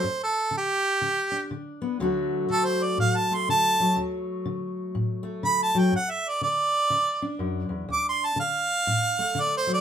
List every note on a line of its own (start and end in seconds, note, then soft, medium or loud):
0.00 0.49 G2 medium
0.00 0.20 C5 medium
0.24 0.53 A4 medium
0.51 0.97 D3 medium
0.58 1.50 G4 medium
1.01 1.47 D3 medium
1.32 2.02 D4 medium
1.51 1.96 D3 medium
1.82 1.98 B3 medium
2.00 2.45 D2 medium
2.00 2.49 D3 medium
2.00 3.79 F#3 medium
2.00 3.30 A3 medium
2.00 3.96 F#4 medium
2.50 2.95 D3 soft
2.50 2.67 A4 loud
2.65 2.85 C5 medium
2.83 2.98 D5 medium
2.98 3.44 A2 medium
2.98 3.18 F5 medium
3.17 3.36 A5 medium
3.31 5.22 A3 medium
3.31 3.49 C6 medium
3.49 3.94 D3 medium
3.49 3.97 A5 loud
3.80 5.74 F#3 medium
3.96 4.42 D2 medium
4.46 4.91 D3 medium
4.95 5.40 A2 medium
5.23 5.92 A3 medium
5.43 5.89 D3 medium
5.43 5.60 B5 medium
5.63 5.80 A5 medium
5.75 5.93 F#3 medium
5.75 5.94 G5 medium
5.92 6.38 G2 medium
5.92 6.12 F#5 medium
6.11 6.30 E5 medium
6.28 6.42 D5 medium
6.41 6.87 D3 medium
6.41 7.38 D5 loud
6.90 7.36 D3 medium
7.22 9.18 D4 medium
7.39 7.69 F#2 medium
7.69 7.88 E2 medium
7.89 8.35 D2 medium
7.93 8.07 D6 medium
8.09 8.27 C6 medium
8.26 8.39 A5 medium
8.36 8.83 D3 medium
8.36 9.42 F5 loud
8.87 9.33 A2 medium
9.19 9.81 A3 medium
9.35 9.81 D3 medium
9.40 9.55 D5 medium
9.57 9.71 C5 medium
9.67 9.81 F#3 medium
9.73 9.81 D5 medium